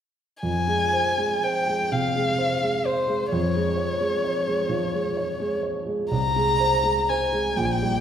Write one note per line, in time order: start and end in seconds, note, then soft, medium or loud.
0.43 3.28 F2 soft
0.43 1.45 G#5 soft
0.67 1.08 G#3 soft
0.93 1.33 C5 soft
1.17 1.57 G#3 soft
1.43 1.82 C5 soft
1.43 1.93 G5 soft
1.68 2.05 G#3 soft
1.92 2.29 C3 soft
1.92 2.88 F5 soft
2.16 2.53 G#3 soft
2.38 2.76 C5 soft
2.62 2.99 G#3 soft
2.86 3.23 C5 soft
2.86 3.33 C5 soft
3.08 3.31 G#3 soft
3.32 6.07 F2 soft
3.32 5.60 C#5 soft
3.55 3.92 G#3 soft
3.78 4.15 C#5 soft
4.01 4.38 G#3 soft
4.24 4.61 C#5 soft
4.47 4.84 G#3 soft
4.69 5.07 F3 soft
4.93 5.30 G#3 soft
5.17 5.54 C#5 soft
5.40 5.78 G#3 soft
5.63 6.01 C#5 soft
5.86 6.11 G#3 soft
6.11 7.52 C2 soft
6.11 7.11 A#5 medium
6.36 6.74 G#3 soft
6.60 6.98 C5 soft
6.84 7.22 G#3 soft
7.09 7.47 C5 soft
7.09 7.58 G#5 soft
7.33 7.57 G#3 soft
7.56 8.00 A#1 soft
7.56 7.67 G5 soft
7.65 7.74 G#5 soft
7.72 8.00 G5 soft
7.82 8.00 G3 soft